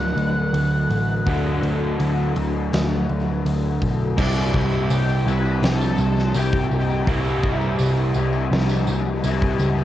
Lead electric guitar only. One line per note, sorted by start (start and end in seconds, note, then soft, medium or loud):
0.00 3.41 F#5 loud
4.19 4.56 D4 loud
4.56 4.91 E4 medium
4.91 5.28 G4 medium
5.28 5.63 B4 loud
5.64 6.38 A4 loud
6.36 7.07 G4 medium
7.08 7.76 E4 medium